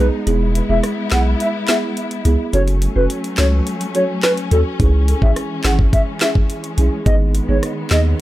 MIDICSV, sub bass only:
0, 0, Header, 1, 2, 480
1, 0, Start_track
1, 0, Tempo, 566038
1, 228, Time_signature, 4, 2, 24, 8
1, 6962, End_track
2, 0, Start_track
2, 0, Title_t, "Sub bass"
2, 0, Program_c, 0, 38
2, 0, Note_on_c, 0, 35, 84
2, 86, Note_off_c, 0, 35, 0
2, 228, Note_on_c, 0, 28, 109
2, 520, Note_off_c, 0, 28, 0
2, 588, Note_on_c, 0, 28, 91
2, 686, Note_off_c, 0, 28, 0
2, 948, Note_on_c, 0, 35, 92
2, 1143, Note_off_c, 0, 35, 0
2, 1909, Note_on_c, 0, 37, 89
2, 2006, Note_off_c, 0, 37, 0
2, 2148, Note_on_c, 0, 30, 108
2, 2440, Note_off_c, 0, 30, 0
2, 2509, Note_on_c, 0, 30, 92
2, 2606, Note_off_c, 0, 30, 0
2, 2869, Note_on_c, 0, 37, 97
2, 3063, Note_off_c, 0, 37, 0
2, 3828, Note_on_c, 0, 39, 96
2, 3926, Note_off_c, 0, 39, 0
2, 4068, Note_on_c, 0, 37, 113
2, 4360, Note_off_c, 0, 37, 0
2, 4426, Note_on_c, 0, 33, 86
2, 4524, Note_off_c, 0, 33, 0
2, 4788, Note_on_c, 0, 32, 90
2, 4982, Note_off_c, 0, 32, 0
2, 5748, Note_on_c, 0, 35, 95
2, 5845, Note_off_c, 0, 35, 0
2, 5988, Note_on_c, 0, 32, 119
2, 6280, Note_off_c, 0, 32, 0
2, 6349, Note_on_c, 0, 32, 91
2, 6446, Note_off_c, 0, 32, 0
2, 6708, Note_on_c, 0, 39, 94
2, 6903, Note_off_c, 0, 39, 0
2, 6962, End_track
0, 0, End_of_file